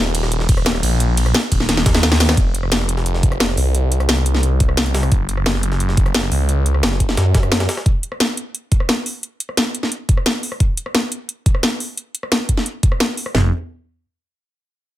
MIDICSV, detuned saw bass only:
0, 0, Header, 1, 2, 480
1, 0, Start_track
1, 0, Tempo, 342857
1, 1404, Time_signature, 4, 2, 24, 8
1, 20965, End_track
2, 0, Start_track
2, 0, Title_t, "Detuned saw bass"
2, 0, Program_c, 0, 39
2, 0, Note_on_c, 0, 27, 99
2, 665, Note_off_c, 0, 27, 0
2, 684, Note_on_c, 0, 27, 96
2, 1145, Note_off_c, 0, 27, 0
2, 1164, Note_on_c, 0, 34, 96
2, 1865, Note_off_c, 0, 34, 0
2, 2123, Note_on_c, 0, 27, 100
2, 2584, Note_off_c, 0, 27, 0
2, 2603, Note_on_c, 0, 39, 100
2, 3304, Note_off_c, 0, 39, 0
2, 3323, Note_on_c, 0, 29, 99
2, 4504, Note_off_c, 0, 29, 0
2, 4523, Note_on_c, 0, 29, 98
2, 4984, Note_off_c, 0, 29, 0
2, 5003, Note_on_c, 0, 36, 97
2, 5704, Note_off_c, 0, 36, 0
2, 5724, Note_on_c, 0, 36, 99
2, 7145, Note_off_c, 0, 36, 0
2, 7164, Note_on_c, 0, 30, 96
2, 8345, Note_off_c, 0, 30, 0
2, 8363, Note_on_c, 0, 30, 99
2, 8824, Note_off_c, 0, 30, 0
2, 8844, Note_on_c, 0, 37, 99
2, 9545, Note_off_c, 0, 37, 0
2, 9564, Note_on_c, 0, 30, 96
2, 10025, Note_off_c, 0, 30, 0
2, 10043, Note_on_c, 0, 42, 98
2, 10744, Note_off_c, 0, 42, 0
2, 18684, Note_on_c, 0, 29, 98
2, 18907, Note_off_c, 0, 29, 0
2, 20965, End_track
0, 0, End_of_file